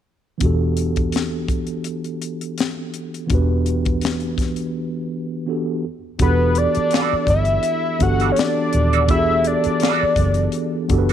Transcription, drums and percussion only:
0.41 kick medium
0.41 closed hi-hat medium
0.77 closed hi-hat soft
0.96 kick medium
0.96 closed hi-hat soft
1.12 snare medium
1.12 closed hi-hat medium
1.48 kick medium
1.48 closed hi-hat medium
1.67 closed hi-hat soft
1.84 closed hi-hat medium
2.04 closed hi-hat soft
2.22 closed hi-hat medium
2.41 closed hi-hat soft
2.58 snare medium
2.58 closed hi-hat medium
2.94 closed hi-hat medium
3.14 closed hi-hat soft
3.30 kick medium
3.30 closed hi-hat medium
3.66 closed hi-hat soft
3.85 kick medium
3.85 closed hi-hat soft
4.01 snare medium
4.01 closed hi-hat medium
4.20 closed hi-hat soft
4.38 kick medium
4.38 snare soft
4.38 closed hi-hat medium
4.56 closed hi-hat soft
6.19 kick medium
6.19 closed hi-hat medium
6.55 closed hi-hat medium
6.75 closed hi-hat soft
6.91 snare medium
6.91 closed hi-hat medium
7.27 kick medium
7.27 closed hi-hat medium
7.45 closed hi-hat soft
7.63 closed hi-hat medium
8.00 kick medium
8.00 closed hi-hat medium
8.20 closed hi-hat soft
8.36 snare loud
8.36 closed hi-hat medium
8.73 closed hi-hat medium
8.93 closed hi-hat soft
9.08 kick medium
9.08 closed hi-hat medium
9.44 closed hi-hat medium
9.64 closed hi-hat soft
9.80 snare medium
9.80 closed hi-hat medium
10.16 kick medium
10.16 closed hi-hat medium
10.34 closed hi-hat soft
10.52 closed hi-hat medium
10.89 kick medium
10.89 closed hi-hat medium
11.09 closed hi-hat soft

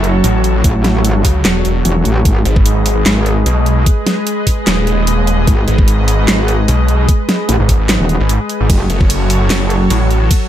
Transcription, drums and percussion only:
0.04 closed hi-hat medium
0.24 closed hi-hat medium
0.44 closed hi-hat medium
0.64 kick loud
0.64 closed hi-hat medium
0.84 snare medium
0.84 closed hi-hat medium
1.05 closed hi-hat medium
1.25 kick medium
1.25 open hi-hat loud
1.45 snare loud
1.45 clap medium
1.45 closed hi-hat medium
1.65 closed hi-hat medium
1.85 closed hi-hat medium
2.05 closed hi-hat medium
2.25 kick loud
2.25 closed hi-hat medium
2.45 closed hi-hat medium
2.56 kick loud
2.66 closed hi-hat medium
2.86 open hi-hat medium
3.06 snare loud
3.06 clap medium
3.06 closed hi-hat medium
3.26 closed hi-hat medium
3.46 closed hi-hat medium
3.66 closed hi-hat medium
3.86 kick loud
3.86 closed hi-hat medium
4.07 snare medium
4.07 closed hi-hat medium
4.27 closed hi-hat medium
4.47 kick medium
4.47 open hi-hat medium
4.67 snare loud
4.67 clap medium
4.67 closed hi-hat medium
4.87 closed hi-hat medium
5.07 closed hi-hat medium
5.27 closed hi-hat medium
5.47 kick loud
5.47 closed hi-hat medium
5.68 closed hi-hat medium
5.78 kick loud
5.88 closed hi-hat medium
6.08 open hi-hat medium
6.28 snare loud
6.28 clap medium
6.28 closed hi-hat medium
6.48 closed hi-hat medium
6.68 closed hi-hat medium
6.88 closed hi-hat medium
7.08 kick loud
7.08 closed hi-hat medium
7.29 snare medium
7.29 closed hi-hat soft
7.49 closed hi-hat medium
7.69 kick medium
7.69 open hi-hat medium
7.89 snare loud
7.89 clap medium
7.89 closed hi-hat medium
8.09 closed hi-hat medium
8.29 closed hi-hat medium
8.49 closed hi-hat medium
8.70 kick loud
8.70 closed hi-hat medium
8.70 ride medium
8.90 closed hi-hat medium
9.01 kick loud
9.10 closed hi-hat medium
9.10 ride soft
9.30 open hi-hat medium
9.50 snare loud
9.50 clap medium
9.50 closed hi-hat medium
9.50 ride medium
9.70 closed hi-hat medium
9.90 closed hi-hat medium
9.90 ride soft
10.11 closed hi-hat medium
10.31 kick loud
10.31 closed hi-hat medium
10.31 ride medium

